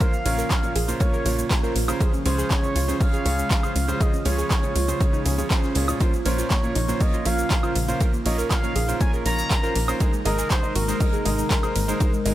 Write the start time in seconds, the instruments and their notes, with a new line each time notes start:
Already playing: analog synth pad C#3 F3 A#3 F4
0.00 grand piano A#2 C#4 F4 A#4 C5, synth pluck A#4, analog synth lead F5, kick, closed hi-hat, ride, shaker
0.13 synth pluck A#3, shaker
0.25 analog synth bass A#1, grand piano A#2 C#4 F4 A#4 C#5, synth pluck A#3, closed hi-hat, open hi-hat, ride
0.38 synth pluck A#4, snare, shaker
0.50 kick, snare, clap, closed hi-hat, ride, high woodblock, shaker
0.63 grand piano A#2 C#4 F4 A#4 C#5, synth pluck A#3, closed hi-hat, shaker
0.75 analog synth bass A#1, synth pluck G#4, closed hi-hat, open hi-hat, ride
0.88 grand piano A#2 C#4 F4 A#4 C5, synth pluck A#3, closed hi-hat, shaker
1.00 grand piano A#2 C#4 F4 A#4 C#5, synth pluck A#3, analog synth lead C#5, kick, closed hi-hat, ride, shaker
1.13 synth pluck A#4, shaker
1.25 analog synth bass A#1, grand piano A#2 C#4 F4 A#4 C#5, synth pluck A#3, closed hi-hat, open hi-hat, ride
1.38 synth pluck A#3, shaker
1.50 synth pluck A#3, kick, snare, clap, closed hi-hat, ride, shaker
1.63 grand piano A#2 C#4 F4 A#4 C5, synth pluck A#4, snare, shaker
1.75 analog synth bass A#1, synth pluck A#3, snare, closed hi-hat, open hi-hat, ride
1.88 grand piano C#3 C#4 F4 A#4 C5, synth pluck A#3, high woodblock, shaker
2.00 grand piano C#3 C#4 F4 G#4, analog synth pad G#3, synth pluck G#4, kick, closed hi-hat, ride, shaker
2.13 synth pluck C#4, shaker
2.25 analog synth bass C#2, grand piano C#3 C#4 F4 G#4 C#5, synth pluck C#4, analog synth lead C5, snare, closed hi-hat, open hi-hat, ride
2.38 synth pluck G#4, snare, shaker
2.51 synth pluck C#4, analog synth lead C#5, kick, snare, clap, closed hi-hat, ride, shaker
2.63 grand piano C#3 C#4 F4 G#4 C#5, synth pluck C#4, shaker
2.75 analog synth bass C#2, synth pluck F4, closed hi-hat, open hi-hat, ride
2.88 grand piano C#3 C#4 F4 G#4 C5, synth pluck C#4, snare, shaker
3.00 grand piano C#3 C#4 C#5, analog synth lead F5, kick, open hi-hat, ride, shaker
3.13 synth pluck G#4, closed hi-hat, shaker
3.25 analog synth bass C#2, grand piano C#3 C#4 F4 G#4 C#5, synth pluck C#4, closed hi-hat, open hi-hat, ride
3.38 synth pluck C#4, shaker
3.50 synth pluck C#4, kick, snare, clap, closed hi-hat, ride, shaker
3.63 grand piano C#3 C#4 F4 G#4 C5, synth pluck G#4, high woodblock, shaker
3.76 analog synth bass C#2, synth pluck C#4, closed hi-hat, open hi-hat, ride
3.88 grand piano C#3 C#4 F4 G#4 C5, synth pluck C#4, shaker
4.00 analog synth pad A#3, grand piano C#4 F4 C5, synth pluck G#4, analog synth lead D#5, kick, closed hi-hat, ride, shaker
4.13 synth pluck C#4, shaker
4.25 analog synth bass C#2, grand piano C#3 C#4 F4 G#4 C#5, synth pluck C#4, analog synth lead C#5, closed hi-hat, open hi-hat, ride
4.38 synth pluck G#4, snare, shaker
4.50 synth pluck C#4, kick, snare, clap, closed hi-hat, ride, high woodblock, shaker
4.63 grand piano C#3 C#4 F4 G#4 C#5, synth pluck C#4, closed hi-hat, shaker
4.75 analog synth bass C#2, synth pluck F4, closed hi-hat, open hi-hat, ride
4.88 grand piano C#3 C#4 F4 G#4 C5, synth pluck C#4, closed hi-hat, shaker
5.01 grand piano C#3 C#4 F4 G#4 C#5, synth pluck C#4, kick, closed hi-hat, ride, shaker
5.13 synth pluck D#4, shaker
5.26 analog synth bass C#2, grand piano C#3 C#4 F4 G#4 C#5, synth pluck C#4, closed hi-hat, open hi-hat, ride
5.38 grand piano C#3 C#4 F4 G#4 C#5, synth pluck C#4, shaker
5.50 grand piano C#3 C#4 F4, synth pluck C#4, kick, snare, clap, closed hi-hat, ride, shaker
5.63 synth pluck C#4, snare, shaker
5.75 analog synth bass C#2, grand piano A#2 C#4 F4 G#4 C#5, synth pluck C#4, snare, closed hi-hat, open hi-hat, ride
5.88 grand piano A#2 C#4 F4 G#4 C#5, synth pluck C#4, high woodblock, shaker
6.00 grand piano A#2 C#4 F4 A#4 C5, analog synth pad C#3 F3, synth pluck F4, kick, closed hi-hat, ride, shaker
6.13 synth pluck A#3, shaker
6.25 analog synth bass A#1, grand piano A#2 C#4 F4 A#4 C#5, synth pluck A#3, analog synth lead C5, snare, closed hi-hat, open hi-hat, ride
6.38 synth pluck F4, snare, shaker
6.50 synth pluck A#3, analog synth lead C#5, kick, snare, clap, closed hi-hat, ride, shaker
6.63 grand piano A#2 C#4 F4 A#4 C#5, synth pluck A#3, shaker
6.75 analog synth bass A#1, synth pluck D#4, closed hi-hat, open hi-hat, ride
6.88 grand piano A#2 C#4 F4 A#4 C5, synth pluck A#3, snare, shaker
7.00 grand piano A#2 C#4 F4 A#4 C#5, synth pluck A#3, analog synth lead D#5, kick, open hi-hat, ride, shaker
7.13 synth pluck F4, closed hi-hat, shaker
7.25 analog synth bass A#1, grand piano A#2 C#4 F4 A#4 C#5, synth pluck A#3, analog synth lead F5, closed hi-hat, open hi-hat, ride
7.38 synth pluck A#3, shaker
7.50 synth pluck A#3, kick, snare, clap, closed hi-hat, ride, shaker
7.63 grand piano A#2 C#4 F4 A#4 C5, synth pluck F4, high woodblock, shaker
7.76 analog synth bass A#1, synth pluck A#3, closed hi-hat, open hi-hat, ride
7.88 grand piano A#2 C#4 F4 A#4 C5, synth pluck A#3, shaker
8.01 grand piano A#2 C#4, analog synth pad D#4, synth pluck A#4, kick, closed hi-hat, ride, shaker
8.13 synth pluck A#3, shaker
8.25 analog synth bass A#1, grand piano A#2 C#4 F4 A#4 C#5, synth pluck A#3, analog synth lead D#5, closed hi-hat, open hi-hat, ride
8.38 synth pluck A#4, snare, shaker
8.50 synth pluck A#3, analog synth lead F5, kick, snare, clap, closed hi-hat, ride, high woodblock, shaker
8.63 grand piano A#2 C#4 F4 A#4 C#5, synth pluck A#3, closed hi-hat, shaker
8.75 analog synth bass A#1, synth pluck G#4, closed hi-hat, open hi-hat, ride
8.88 grand piano A#2 C#4 F4 A#4 C5, synth pluck A#3, closed hi-hat, shaker
9.00 grand piano A#2 C#4 F4 A#4 C#5, synth pluck A#3, analog synth lead G#5, kick, closed hi-hat, ride, shaker
9.13 synth pluck A#4, shaker
9.25 analog synth bass A#1, grand piano A#2 C#4 F4 A#4 C#5, synth pluck A#3, analog synth lead A#5, closed hi-hat, open hi-hat, ride
9.38 synth pluck A#3, shaker
9.50 synth pluck A#3, kick, snare, clap, closed hi-hat, ride, shaker
9.63 grand piano A#2 C#4 F4 A#4 C5, synth pluck A#4, snare, shaker
9.75 analog synth bass A#1, synth pluck A#3, snare, closed hi-hat, open hi-hat, ride
9.88 synth pluck A#3, grand piano C#4 F4 A#4 C5, high woodblock, shaker
10.00 analog synth pad C3 D#3 G#3, grand piano G#3 D#4 G#4 A#4 C5, synth pluck G#4, kick, closed hi-hat, ride, shaker
10.13 synth pluck G#3, shaker
10.25 analog synth bass G#1, grand piano G#3 D#4 G#4 A#4 D#5, synth pluck G#3, analog synth lead A#4, snare, closed hi-hat, open hi-hat, ride
10.38 synth pluck G#4, snare, shaker
10.50 synth pluck G#3, analog synth lead C5, kick, snare, clap, closed hi-hat, ride, shaker
10.63 grand piano G#3 D#4 G#4 A#4 D#5, synth pluck G#3, shaker
10.75 analog synth bass G#1, synth pluck F#4, analog synth lead A#4, closed hi-hat, open hi-hat, ride
10.88 synth pluck G#3, grand piano G#3 D#4 G#4 A#4 C5, snare, shaker
11.00 synth pluck G#3, grand piano G#3 D#4 G#4 A#4 D#5, kick, open hi-hat, ride, shaker
11.13 synth pluck G#4, closed hi-hat, shaker
11.25 analog synth bass G#1, synth pluck G#3, grand piano G#3 D#4 G#4 A#4 D#5, closed hi-hat, open hi-hat, ride
11.38 synth pluck G#3, shaker
11.50 synth pluck G#3, kick, snare, clap, closed hi-hat, ride, shaker
11.63 grand piano G#3 D#4 G#4 A#4 C5, synth pluck G#4, high woodblock, shaker
11.75 analog synth bass G#1, synth pluck G#3, closed hi-hat, open hi-hat, ride
11.88 grand piano G#3 D#4 G#4 A#4 C5, synth pluck G#3, shaker
12.00 grand piano G#3 D#4 G#4 A#4 C5, analog synth pad C4, synth pluck D#4, kick, closed hi-hat, ride, shaker
12.13 synth pluck G#3, shaker
12.25 analog synth bass G#1, synth pluck G#3, grand piano G#3 D#4 G#4 A#4 D#5, closed hi-hat, open hi-hat, ride